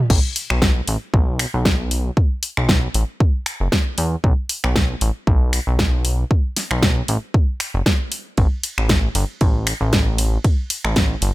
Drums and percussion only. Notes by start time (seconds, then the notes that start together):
0.10 kick, crash
0.36 open hi-hat
0.50 finger snap
0.62 kick, snare
0.88 open hi-hat
1.14 kick
1.39 finger snap, open hi-hat
1.65 kick, snare
1.91 open hi-hat
2.17 kick
2.43 open hi-hat
2.57 finger snap
2.69 kick, snare
2.94 open hi-hat
3.20 kick
3.46 finger snap, open hi-hat
3.72 kick, snare
3.98 open hi-hat
4.24 kick
4.49 open hi-hat
4.64 finger snap
4.76 kick, snare
5.01 open hi-hat
5.27 kick
5.53 finger snap, open hi-hat
5.79 kick, snare
6.05 open hi-hat
6.31 kick
6.57 snare, open hi-hat
6.71 finger snap
6.83 kick, snare
7.08 open hi-hat
7.34 kick
7.60 finger snap, open hi-hat
7.86 kick, snare
8.12 open hi-hat
8.37 kick, ride
8.63 open hi-hat, ride
8.78 finger snap
8.89 kick, snare, ride
9.15 open hi-hat, ride
9.41 kick, ride
9.67 finger snap, open hi-hat, ride
9.93 kick, snare, ride
10.18 open hi-hat, ride
10.44 kick, ride
10.70 open hi-hat, ride
10.85 finger snap
10.96 kick, snare, ride
11.22 open hi-hat, ride